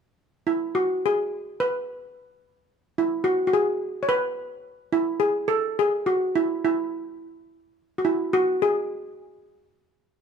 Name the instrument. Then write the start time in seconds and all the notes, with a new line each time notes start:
steel pan
0.47 E4
0.75 F#4
1.06 G#4
1.60 B4
2.98 E4
3.24 F#4
3.47 F#4
3.53 G#4
4.03 C#5
4.09 B4
4.93 E4
5.20 G#4
5.48 A4
5.79 G#4
6.06 F#4
6.36 E4
6.65 E4
7.98 F#4
8.05 E4
8.33 F#4
8.62 G#4